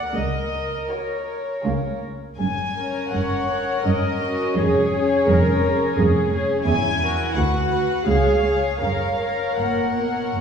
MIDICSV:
0, 0, Header, 1, 6, 480
1, 0, Start_track
1, 0, Key_signature, 6, "major"
1, 0, Tempo, 752823
1, 93, Time_signature, 3, 2, 24, 8
1, 1531, Tempo, 728155
1, 2491, Tempo, 701754
1, 5371, Tempo, 754717
1, 6859, End_track
2, 0, Start_track
2, 0, Title_t, "Violin section"
2, 0, Program_c, 0, 48
2, 0, Note_on_c, 0, 78, 60
2, 91, Note_off_c, 0, 78, 0
2, 94, Note_on_c, 0, 75, 57
2, 575, Note_off_c, 0, 75, 0
2, 581, Note_on_c, 0, 73, 42
2, 1295, Note_off_c, 0, 73, 0
2, 1524, Note_on_c, 0, 80, 60
2, 1983, Note_off_c, 0, 80, 0
2, 2011, Note_on_c, 0, 78, 49
2, 2490, Note_off_c, 0, 78, 0
2, 2495, Note_on_c, 0, 75, 61
2, 2977, Note_on_c, 0, 73, 53
2, 2981, Note_off_c, 0, 75, 0
2, 4174, Note_off_c, 0, 73, 0
2, 4404, Note_on_c, 0, 80, 84
2, 4854, Note_off_c, 0, 80, 0
2, 4884, Note_on_c, 0, 78, 63
2, 5371, Note_on_c, 0, 77, 61
2, 5372, Note_off_c, 0, 78, 0
2, 5831, Note_off_c, 0, 77, 0
2, 5839, Note_on_c, 0, 77, 52
2, 6318, Note_off_c, 0, 77, 0
2, 6328, Note_on_c, 0, 78, 41
2, 6859, Note_off_c, 0, 78, 0
2, 6859, End_track
3, 0, Start_track
3, 0, Title_t, "Viola section"
3, 0, Program_c, 1, 48
3, 0, Note_on_c, 1, 74, 48
3, 95, Note_off_c, 1, 74, 0
3, 96, Note_on_c, 1, 70, 45
3, 1269, Note_off_c, 1, 70, 0
3, 2012, Note_on_c, 1, 73, 45
3, 2464, Note_off_c, 1, 73, 0
3, 2488, Note_on_c, 1, 70, 41
3, 2733, Note_off_c, 1, 70, 0
3, 2744, Note_on_c, 1, 66, 46
3, 2982, Note_on_c, 1, 68, 50
3, 2983, Note_off_c, 1, 66, 0
3, 3466, Note_off_c, 1, 68, 0
3, 3467, Note_on_c, 1, 70, 59
3, 3933, Note_off_c, 1, 70, 0
3, 3946, Note_on_c, 1, 68, 57
3, 4404, Note_on_c, 1, 64, 50
3, 4409, Note_off_c, 1, 68, 0
3, 4872, Note_off_c, 1, 64, 0
3, 4885, Note_on_c, 1, 66, 59
3, 5371, Note_on_c, 1, 68, 46
3, 5373, Note_off_c, 1, 66, 0
3, 5839, Note_off_c, 1, 68, 0
3, 5841, Note_on_c, 1, 70, 45
3, 6859, Note_off_c, 1, 70, 0
3, 6859, End_track
4, 0, Start_track
4, 0, Title_t, "Violin section"
4, 0, Program_c, 2, 48
4, 569, Note_on_c, 2, 66, 38
4, 571, Note_on_c, 2, 70, 39
4, 925, Note_off_c, 2, 66, 0
4, 926, Note_off_c, 2, 70, 0
4, 1048, Note_on_c, 2, 68, 37
4, 1050, Note_on_c, 2, 65, 36
4, 1410, Note_off_c, 2, 68, 0
4, 1411, Note_off_c, 2, 65, 0
4, 1774, Note_on_c, 2, 61, 37
4, 1775, Note_on_c, 2, 70, 38
4, 2243, Note_off_c, 2, 70, 0
4, 2245, Note_off_c, 2, 61, 0
4, 2251, Note_on_c, 2, 70, 33
4, 2252, Note_on_c, 2, 61, 35
4, 2723, Note_off_c, 2, 70, 0
4, 2724, Note_off_c, 2, 61, 0
4, 2738, Note_on_c, 2, 61, 39
4, 2739, Note_on_c, 2, 70, 38
4, 2974, Note_off_c, 2, 61, 0
4, 2976, Note_off_c, 2, 70, 0
4, 2981, Note_on_c, 2, 68, 43
4, 2982, Note_on_c, 2, 61, 44
4, 3219, Note_off_c, 2, 61, 0
4, 3219, Note_off_c, 2, 68, 0
4, 3226, Note_on_c, 2, 61, 50
4, 3229, Note_on_c, 2, 68, 50
4, 3696, Note_off_c, 2, 61, 0
4, 3698, Note_off_c, 2, 68, 0
4, 3712, Note_on_c, 2, 61, 42
4, 3712, Note_on_c, 2, 68, 43
4, 4167, Note_off_c, 2, 68, 0
4, 4169, Note_off_c, 2, 61, 0
4, 4175, Note_on_c, 2, 68, 47
4, 4176, Note_on_c, 2, 61, 47
4, 4402, Note_off_c, 2, 61, 0
4, 4402, Note_off_c, 2, 68, 0
4, 4643, Note_on_c, 2, 66, 47
4, 4643, Note_on_c, 2, 70, 47
4, 4878, Note_off_c, 2, 66, 0
4, 4879, Note_off_c, 2, 70, 0
4, 4886, Note_on_c, 2, 66, 39
4, 4886, Note_on_c, 2, 71, 41
4, 5120, Note_off_c, 2, 71, 0
4, 5121, Note_off_c, 2, 66, 0
4, 5128, Note_on_c, 2, 71, 42
4, 5129, Note_on_c, 2, 66, 40
4, 5368, Note_off_c, 2, 66, 0
4, 5368, Note_off_c, 2, 71, 0
4, 5379, Note_on_c, 2, 73, 42
4, 5380, Note_on_c, 2, 68, 39
4, 5597, Note_off_c, 2, 73, 0
4, 5598, Note_off_c, 2, 68, 0
4, 5605, Note_on_c, 2, 73, 34
4, 5606, Note_on_c, 2, 68, 36
4, 5836, Note_off_c, 2, 68, 0
4, 5836, Note_off_c, 2, 73, 0
4, 5846, Note_on_c, 2, 70, 35
4, 5846, Note_on_c, 2, 73, 35
4, 6082, Note_off_c, 2, 70, 0
4, 6082, Note_off_c, 2, 73, 0
4, 6089, Note_on_c, 2, 73, 33
4, 6090, Note_on_c, 2, 70, 33
4, 6564, Note_off_c, 2, 70, 0
4, 6564, Note_off_c, 2, 73, 0
4, 6576, Note_on_c, 2, 70, 31
4, 6578, Note_on_c, 2, 73, 30
4, 6859, Note_off_c, 2, 70, 0
4, 6859, Note_off_c, 2, 73, 0
4, 6859, End_track
5, 0, Start_track
5, 0, Title_t, "Cello section"
5, 0, Program_c, 3, 48
5, 91, Note_on_c, 3, 37, 45
5, 477, Note_off_c, 3, 37, 0
5, 1049, Note_on_c, 3, 37, 47
5, 1435, Note_off_c, 3, 37, 0
5, 1527, Note_on_c, 3, 42, 49
5, 1936, Note_off_c, 3, 42, 0
5, 2012, Note_on_c, 3, 42, 49
5, 2417, Note_off_c, 3, 42, 0
5, 2491, Note_on_c, 3, 42, 52
5, 2902, Note_off_c, 3, 42, 0
5, 2975, Note_on_c, 3, 41, 60
5, 3387, Note_off_c, 3, 41, 0
5, 3463, Note_on_c, 3, 41, 59
5, 3866, Note_off_c, 3, 41, 0
5, 3942, Note_on_c, 3, 41, 65
5, 4333, Note_off_c, 3, 41, 0
5, 4409, Note_on_c, 3, 40, 63
5, 4808, Note_off_c, 3, 40, 0
5, 4882, Note_on_c, 3, 38, 57
5, 5295, Note_off_c, 3, 38, 0
5, 5371, Note_on_c, 3, 37, 56
5, 5764, Note_off_c, 3, 37, 0
5, 5843, Note_on_c, 3, 42, 48
5, 6256, Note_off_c, 3, 42, 0
5, 6336, Note_on_c, 3, 46, 40
5, 6558, Note_off_c, 3, 46, 0
5, 6574, Note_on_c, 3, 47, 41
5, 6813, Note_off_c, 3, 47, 0
5, 6813, Note_on_c, 3, 46, 41
5, 6859, Note_off_c, 3, 46, 0
5, 6859, End_track
6, 0, Start_track
6, 0, Title_t, "Double bass section"
6, 0, Program_c, 4, 48
6, 89, Note_on_c, 4, 37, 52
6, 476, Note_off_c, 4, 37, 0
6, 1048, Note_on_c, 4, 37, 45
6, 1434, Note_off_c, 4, 37, 0
6, 1533, Note_on_c, 4, 30, 49
6, 1940, Note_off_c, 4, 30, 0
6, 2014, Note_on_c, 4, 30, 47
6, 2418, Note_off_c, 4, 30, 0
6, 2492, Note_on_c, 4, 30, 48
6, 2903, Note_off_c, 4, 30, 0
6, 2984, Note_on_c, 4, 29, 53
6, 3391, Note_off_c, 4, 29, 0
6, 3469, Note_on_c, 4, 29, 60
6, 3869, Note_off_c, 4, 29, 0
6, 3941, Note_on_c, 4, 29, 65
6, 4332, Note_off_c, 4, 29, 0
6, 4412, Note_on_c, 4, 28, 61
6, 4809, Note_off_c, 4, 28, 0
6, 4885, Note_on_c, 4, 38, 61
6, 5297, Note_off_c, 4, 38, 0
6, 5373, Note_on_c, 4, 37, 56
6, 5765, Note_off_c, 4, 37, 0
6, 5840, Note_on_c, 4, 30, 43
6, 6255, Note_off_c, 4, 30, 0
6, 6328, Note_on_c, 4, 30, 41
6, 6738, Note_off_c, 4, 30, 0
6, 6812, Note_on_c, 4, 30, 43
6, 6859, Note_off_c, 4, 30, 0
6, 6859, End_track
0, 0, End_of_file